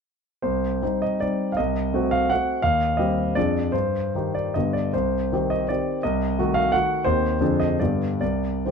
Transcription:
0.42 C2 C5
0.82 G3 C4 D#4
1.02 D#5
1.20 G3 C4 D#4 D5
1.52 F5
1.57 C2 D#5
1.94 A3 C4 F#4
2.11 F5
2.30 A3 C4 F#4 F#5
2.62 D#2 F5
2.97 G3 C4 G4 D#5
3.35 F2 F3 D4 G#4 D5
3.72 G2 C5
4.15 D#3 D#4 G4
4.34 D5
4.54 G2 D3 B3 G4 D#5
4.73 D5
4.93 C2 C5
5.32 D#3 C4 G4
5.50 D#5
5.69 D#3 C4 G4 D5
6.03 C2 D#5
6.39 D#3 A3 F#4
6.54 F5
6.72 D#3 A3 F#4 F#5
7.04 D#2 D#3 C4 G4 C5
7.41 F2 D3 D4 G#4
7.60 D#5
7.79 G2 D3 B3 G4 D5
8.21 C2 D5
8.65 D#3 C4 G4 C5

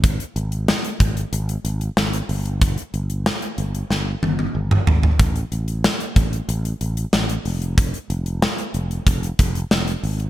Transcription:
Already playing: G#1
0.04 kick, closed hi-hat
0.20 closed hi-hat
0.36 G#1, closed hi-hat
0.52 closed hi-hat
0.68 snare, tambourine
0.84 closed hi-hat
1.00 G#1, kick, closed hi-hat
1.17 closed hi-hat
1.32 G#1, closed hi-hat
1.49 closed hi-hat
1.65 G#1, closed hi-hat
1.81 closed hi-hat
1.97 G#1, snare, tambourine
2.13 closed hi-hat
2.29 G1, open hi-hat
2.46 closed hi-hat
2.61 kick, closed hi-hat
2.78 closed hi-hat
2.94 G1, closed hi-hat
3.10 closed hi-hat
3.26 snare, tambourine
3.42 closed hi-hat
3.58 G1, closed hi-hat
3.75 closed hi-hat
3.90 G1, snare
4.23 G1, high tom
4.39 high tom
4.55 G1
4.71 mid tom
4.87 G#1, floor tom
5.03 floor tom
5.19 A1, kick, closed hi-hat
5.36 closed hi-hat
5.52 A1, closed hi-hat
5.68 closed hi-hat
5.84 snare, tambourine
6.00 closed hi-hat
6.16 A1, kick, closed hi-hat
6.33 closed hi-hat
6.48 A1, closed hi-hat
6.65 closed hi-hat
6.81 A1, closed hi-hat
6.97 closed hi-hat
7.13 A1, snare, tambourine
7.29 closed hi-hat
7.45 F1, open hi-hat
7.62 closed hi-hat
7.78 kick, closed hi-hat
7.94 closed hi-hat
8.10 F1, closed hi-hat
8.26 closed hi-hat
8.42 snare, tambourine
8.58 closed hi-hat
8.74 F1, closed hi-hat
8.91 closed hi-hat
9.06 F1, kick, closed hi-hat
9.23 closed hi-hat
9.39 F1, kick, closed hi-hat
9.55 closed hi-hat
9.71 F1, snare, tambourine
9.88 closed hi-hat
10.03 G#1, open hi-hat
10.20 closed hi-hat

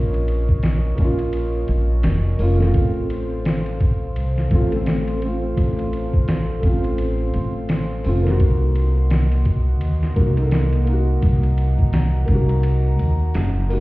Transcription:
Already playing: A#1 A#3 C#4 F4 A#4 C#5 D#5 C#6
0.14 ride
0.28 ride
0.49 kick
0.63 snare, ride
0.95 A#1 A#3, kick, ride
1.00 C#4
1.04 F4
1.19 ride
1.33 ride
1.68 A#1, ride
2.03 F1, snare, ride
2.39 F1 A#3 C#4, open hi-hat
2.43 F4
2.57 A3, snare
2.62 C4
2.66 F4
2.74 A1 A4 C5 F5 C6, kick, ride
3.10 ride
3.45 snare, ride
3.66 ride
3.81 kick, ride
4.16 C2, ride
4.38 snare
4.51 A1 A3 C4, kick, ride
4.55 F4
4.71 A3 C4, ride
4.76 A4
4.86 snare, ride
5.08 ride
5.19 A3, ride
5.24 C4
5.28 F4
5.57 A1, kick, ride
5.79 ride
5.93 ride
6.14 kick
6.28 snare, ride
6.60 A1 A3, kick, ride
6.65 C4
6.69 F4
6.84 ride
6.98 ride
7.34 A1, ride
7.69 snare, ride
8.04 F1 A3 C4, open hi-hat
8.09 F4
8.22 A#3
8.26 D#4, snare
8.31 F#4
8.40 C2 A#3 D#5 F#5, kick, ride
8.75 ride
9.10 snare, ride
9.32 ride
9.45 kick, ride
9.81 D#2, ride
10.03 snare
10.16 C2 A#3 D#4, kick, ride
10.20 F#4
10.36 A#3 D#4, ride
10.41 A4
10.51 snare, ride
10.73 ride
10.84 A#3, ride
10.89 D#4
10.93 F#4
11.22 C2 A#5, kick, ride
11.43 ride
11.58 ride
11.79 kick
11.93 snare, ride
12.25 C2 A#3, kick, ride
12.30 D#4
12.35 F#4
12.49 ride
12.63 ride
12.99 D#2, ride
13.34 F#1, snare, ride
13.69 A#3 D#4, open hi-hat
13.73 F#4

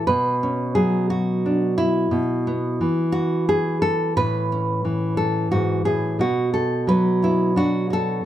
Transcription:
0.07 B2 B4
0.43 C#4
0.75 F#3 G#4
1.10 F#4
1.46 D4
1.78 E4
2.11 B2
2.47 B3
2.81 E3
3.12 F#4
3.49 G#4
3.82 A4
4.17 A2 B4
4.52 C#4
4.85 E3
5.17 A4
5.51 G#2 F#4
5.85 A2 G#4
6.19 B2 F#4
6.54 A4
6.87 F#3 B4
7.22 B3 E4
7.56 D4 F#4
7.90 F#4 A4

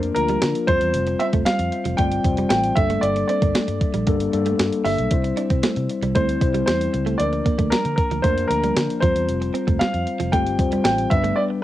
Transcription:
Already playing: F3 A#3 D4 A#4
0.03 closed hi-hat
0.15 D2 F3 A#3 D4 F4 A#4, muted clean electric guitar stroke, closed hi-hat
0.29 G3, closed hi-hat
0.42 D3, snare, closed hi-hat
0.55 closed hi-hat
0.67 F2 F3 G3 C4 F4 C5, kick, closed hi-hat
0.81 E2, closed hi-hat
0.94 F1, closed hi-hat
1.07 muted clean electric guitar stroke, closed hi-hat
1.20 C4 E5, closed hi-hat
1.33 F1 A3, kick, closed hi-hat
1.45 G3 F5, muted fingered electric bass stroke, snare, closed hi-hat
1.59 F2, muted clean electric guitar stroke, closed hi-hat
1.72 closed hi-hat
1.85 F1 F3, closed hi-hat
1.97 G1 G3 A3 C4 F4 D5 G5, kick, closed hi-hat
2.12 closed hi-hat
2.24 F1 G3 C4 F4 C5, muted clean electric guitar stroke, kick, closed hi-hat
2.37 G3, closed hi-hat
2.49 A1 A3 G5, snare, closed hi-hat
2.64 closed hi-hat
2.76 G1 G3 A#3 D4 A4 E5, muted clean electric guitar stroke, kick, closed hi-hat
2.90 A3, closed hi-hat
3.01 G1 D5, closed hi-hat
3.16 muted clean electric guitar stroke, closed hi-hat
3.28 C4 D5, closed hi-hat
3.42 G1 A#3, kick, closed hi-hat
3.55 A3, muted fingered electric bass stroke, snare, closed hi-hat
3.68 G2, muted clean electric guitar stroke, closed hi-hat
3.81 kick, closed hi-hat
3.94 A#1 G3, closed hi-hat
4.07 G1 G3 A#3 D4 A4, kick, closed hi-hat
4.20 closed hi-hat
4.33 G2 G3 A#3 D4 A4, muted clean electric guitar stroke, closed hi-hat
4.46 A3, closed hi-hat
4.59 G2, snare, closed hi-hat
4.73 closed hi-hat
4.84 G1 G3 E5, open hi-hat
4.98 B1, closed hi-hat
5.11 C2 G3 C4 E4 C5, kick, closed hi-hat
5.24 muted clean electric guitar stroke, closed hi-hat
5.37 D4, closed hi-hat
5.50 C2 C4, kick, closed hi-hat
5.63 A3, snare, closed hi-hat
5.76 C3, muted clean electric guitar stroke, closed hi-hat
5.89 closed hi-hat
6.02 C2 G3, closed hi-hat
6.15 D2 G3 A3 C4 E4 C5, kick, closed hi-hat
6.29 closed hi-hat
6.41 C2 G3 C4 E4 C5, muted clean electric guitar stroke, kick, closed hi-hat
6.54 G3, closed hi-hat
6.66 E2 A3 C5, snare, closed hi-hat
6.81 closed hi-hat
6.94 C#2, muted clean electric guitar stroke, closed hi-hat
7.06 A3, closed hi-hat
7.18 D2 F3 A#3 D4 A#4 D5, closed hi-hat
7.33 muted clean electric guitar stroke, closed hi-hat
7.46 A#3, kick, closed hi-hat
7.58 D2 A3, kick, closed hi-hat
7.70 G3 A#4, muted fingered electric bass stroke, snare, closed hi-hat
7.85 D3, muted clean electric guitar stroke, closed hi-hat
7.96 A#4, kick, closed hi-hat
8.11 D2 F3, closed hi-hat
8.22 F2 F3 A3 A#3 D4 A#4 C5, kick, closed hi-hat
8.38 closed hi-hat
8.47 D2 F3 A#3 D4 A#4, muted clean electric guitar stroke, closed hi-hat
8.64 G3, closed hi-hat
8.77 D3, snare, closed hi-hat
8.90 closed hi-hat
9.00 F2 F3 G3 C4 F4 C5, kick, closed hi-hat
9.16 E2, closed hi-hat
9.29 F1, closed hi-hat
9.42 muted clean electric guitar stroke, closed hi-hat
9.54 C4, closed hi-hat
9.67 F1 A3, kick, closed hi-hat
9.79 G3 F5, muted fingered electric bass stroke, snare, closed hi-hat
9.93 F2, muted clean electric guitar stroke, closed hi-hat
10.07 closed hi-hat
10.20 F1 F3, closed hi-hat
10.32 G1 G3 A3 C4 F4 G4 G5, kick, closed hi-hat
10.46 closed hi-hat
10.59 F1 G3 C4 F4 C5, muted clean electric guitar stroke, kick, closed hi-hat
10.72 G3, closed hi-hat
10.84 A1 A3 G5, snare, closed hi-hat
10.98 closed hi-hat
11.10 G1 G3 B3 D4 B4 E5, muted clean electric guitar stroke, kick, closed hi-hat
11.24 A3, closed hi-hat
11.36 D5
11.50 muted clean electric guitar stroke

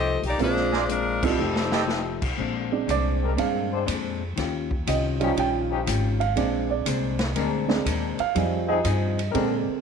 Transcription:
Already playing: C2 F3 A3 C4 D#4 G4 A4 D#5
0.22 B1 A#3, open hi-hat
0.26 D#4 G4 D5
0.38 A#1 A#2 G#3 A#3 C4 D4 F4 C5, kick, open hi-hat
0.42 F4
0.56 snare
0.72 G#4 A#4 C5 D5, snare
0.88 A#2 G#3 C4 D4 F4 A#4, closed hi-hat
1.23 G3 A3 C4 D#4 F4 A4, kick, crash
1.38 F1 F3 A3 D#4 G4
1.56 snare
1.72 G4 A4 D#5 G5, snare
1.87 F3 A3 D#4 G4, snare
2.22 B1, kick, crash
2.37 A#1 A#2 G#3 C4 D4, kick
2.72 G#3 C4 D4
2.87 C2 A#2 G#3 C4 D4 D5, kick, hi-hat pedal, ride
3.22 G#3 C4 D4 A#4
3.36 G2 A#2 G#3 C4 D4 F5, kick, ride
3.72 G#3 C4 D4 C5
3.86 F2 A#2 G#3 C4 D4, kick, hi-hat pedal, ride
4.36 D#2 D#3 C#4 F4 G4, kick, snare, ride
4.71 kick
4.87 C2 D#3 C#4 F4 G4 D#5, kick, hi-hat pedal, ride
5.20 F3 G3 C#4 D#4 F4 G4, ride
5.36 A#1 D#3 C#4 F4 G4 G5, kick, ride
5.71 F3 C#4 D#4 G4
5.86 G#1 D#3 C#4 F4 G4, kick, hi-hat pedal, ride
6.20 F5, ride
6.36 A#1 A#2 G#3 C4 D4, kick, ride
6.41 D4
6.70 D5
6.86 C2 A#2 G#3 C4 D4, kick, hi-hat pedal, ride
7.19 snare, ride
7.36 D2 A#2 G#3 C4 D4 A#4, kick, ride
7.68 G#3 C4 D4, snare
7.85 D#2 A#2 G#3 C4 D4, kick, hi-hat pedal, ride
8.19 F5, muted upright bass stroke, ride
8.35 F2 F3 G3 C4 D#4 G#4, kick, ride
8.68 F3 C4 D#4 G#4 D#5
8.85 G2 F3 C4 D#4 G#4, kick, hi-hat pedal, ride
9.19 ride
9.31 A#2 D3 G#3 C4 D4 A#4, kick, ride
9.35 C4 D4
9.68 muted upright bass stroke

